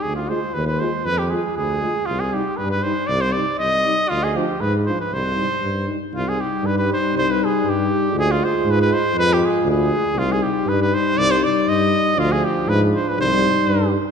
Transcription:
X:1
M:2/4
L:1/16
Q:1/4=119
K:Cm
V:1 name="Trumpet"
A F c2 =B B c2 | =B G A2 A4 | F A G2 =B B c2 | d c d2 e4 |
F A G2 =B z c B | c6 z2 | F A G2 =B B c2 | c =B A2 G4 |
A F c2 =B B c2 | =B G A2 A4 | F A G2 =B B c2 | d c d2 e4 |
F A G2 =B z c B | c6 z2 |]
V:2 name="Euphonium"
z2 F2 z2 F2 | z2 F2 z2 F2 | z2 E2 z2 E2 | z2 E2 z2 E2 |
z2 D2 z2 D2 | z2 E2 z2 E2 | E8- | E8 |
F8 | F6 z2 | E8- | E8 |
D8 | E6 z2 |]
V:3 name="Euphonium" clef=bass
z2 A,2 z2 A,2 | z2 A,2 z2 A,2 | z2 G,2 z2 G,2 | z2 G,2 z2 G,2 |
z2 F,2 z2 F,2 | z2 G,2 z2 G,2 | G,8- | G,8 |
A,8 | A,6 z2 | G,8- | G,8 |
F,8 | G,6 z2 |]
V:4 name="Tuba" clef=bass
D,,4 E,,4 | F,,4 D,,4 | C,,4 G,,4 | C,,4 C,,4 |
D,,4 A,,4 | C,,4 G,,4 | C,,4 G,,4 | C,,4 G,,4 |
D,,4 A,,4 | F,,4 D,,4 | C,,4 G,,4 | C,,4 G,,4 |
D,,4 A,,4 | C,,4 G,,4 |]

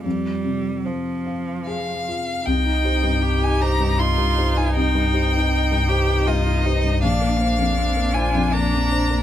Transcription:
X:1
M:3/4
L:1/16
Q:1/4=79
K:Cm
V:1 name="Violin"
z8 f4 | g4- g a b2 c'3 a | g8 e4 | f6 a2 b4 |]
V:2 name="Cello"
G,4 F,6 z2 | E4 G4 F4 | E4 E2 G2 F2 E2 | D2 B,2 C2 F2 D4 |]
V:3 name="Felt piano"
[F,,F]2 C,2 c2 f2 A2 F2 | C,, E [Gc] G,,2 E c G,, E G,, [Gc] E | C,, G,, [Gc] E2 G,, [Gc] E G,, E [Gc] G,, | B,,, B, [Dc] F,,2 B, [Dc] F,, B, F,, [Dc] B, |]
V:4 name="Viola"
z12 | E12- | E12 | D12 |]
V:5 name="Sub bass" clef=bass
z12 | C,,12- | C,,12 | B,,,12 |]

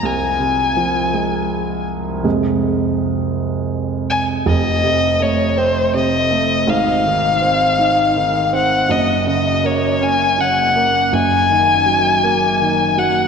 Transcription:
X:1
M:6/8
L:1/8
Q:3/8=54
K:Fphr
V:1 name="Violin"
a4- a z | z4 z a | e2 d c e2 | f4- f g |
e e d a g2 | a4- a g |]
V:2 name="Grand piano" clef=bass
[C,,A,] C, F, A,3 | [F,,C,A,]6 | [F,,,F,,] C, =A, C C, A, | [A,,,A,,] E, C E E, C |
[G,,,G,,] D, B, D D, B, | [G,,,G,,] E, G, B, E, G, |]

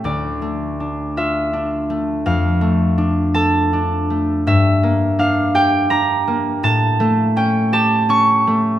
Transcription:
X:1
M:6/8
L:1/8
Q:3/8=55
K:Dm
V:1 name="Harp"
d3 e3 | f3 a3 | e2 f g b2 | a2 g a ^c'2 |]
V:2 name="Harp"
[D,,A,] A, D F D A, | F,, A, D A D A, | G,, B, D G D B, | A,, A, ^C G C A, |]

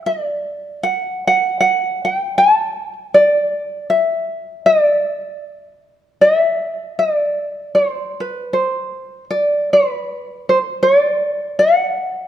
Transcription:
X:1
M:4/4
L:1/16
Q:"Swing" 1/4=78
K:Ddor
V:1 name="Ukulele"
d4 ^f2 f2 f2 g2 a3 z | d4 e4 d8 | e4 d4 c2 B2 c4 | [K:Dmix] d2 B4 c2 d4 f4 |]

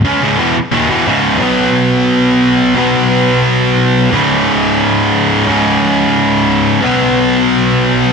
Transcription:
X:1
M:4/4
L:1/8
Q:1/4=177
K:Bmix
V:1 name="Distorted electric guitar" clef=bass
[C,G,C] [C,,G,,C,] [E,,B,,E,] z [D,,^A,,D,] [E,,B,,E,] [C,,G,,C,]2 | [B,,F,B,]8 | [B,,F,B,]8 | [C,,G,,C,]8 |
[C,,G,,C,]8 | [B,,F,B,]8 |]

